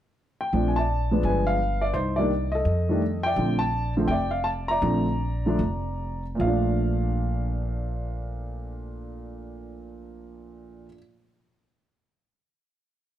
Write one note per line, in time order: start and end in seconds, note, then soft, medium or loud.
0.41 0.68 G5 medium
0.53 1.20 A#1 medium
0.53 0.74 F3 soft
0.53 0.74 A3 soft
0.53 0.75 C4 soft
0.53 0.75 D4 medium
0.68 0.77 G#5 medium
0.76 1.22 D5 medium
0.76 1.21 A5 medium
1.11 1.57 F3 medium
1.11 1.57 G#3 medium
1.11 1.57 B3 medium
1.11 1.58 D4 medium
1.23 1.91 G1 medium
1.23 1.92 B4 medium
1.23 1.46 G#5 medium
1.47 1.84 F5 medium
1.81 1.95 D5 medium
1.94 2.62 C2 medium
1.94 2.63 D#4 medium
1.94 2.16 C5 medium
2.16 2.29 D#3 medium
2.16 2.30 G3 medium
2.16 2.30 A#3 medium
2.16 2.30 D4 medium
2.16 2.54 D5 medium
2.52 3.21 A4 medium
2.52 3.20 D#5 medium
2.65 3.33 F2 medium
2.89 3.00 D#3 medium
2.89 3.01 G3 medium
2.89 3.01 A3 medium
2.89 3.01 D4 medium
3.23 3.93 D5 medium
3.23 3.61 G5 medium
3.36 4.05 A#1 medium
3.36 3.58 D3 soft
3.36 3.59 F3 soft
3.36 3.59 A3 soft
3.36 3.59 C4 medium
3.59 3.93 A5 medium
3.97 4.08 D3 medium
3.97 4.08 F3 medium
3.97 4.08 A3 medium
3.97 4.09 C4 medium
4.08 4.78 F1 medium
4.08 4.69 D5 medium
4.08 4.30 G5 medium
4.31 4.45 F5 medium
4.44 4.50 A5 medium
4.68 6.22 D5 medium
4.68 6.21 A#5 medium
4.82 5.55 A#1 medium
4.82 5.04 D3 medium
4.82 5.05 F3 soft
4.82 5.05 A3 soft
4.82 5.06 C4 medium
5.46 5.58 D3 medium
5.46 5.58 F3 medium
5.46 5.58 A3 medium
5.46 5.59 D4 medium
5.59 6.36 F1 medium
6.35 10.85 A#2 medium
6.35 10.88 F3 medium
6.40 10.85 A#1 medium
6.40 10.92 A3 medium
6.40 10.86 F5 medium
6.47 10.96 D4 medium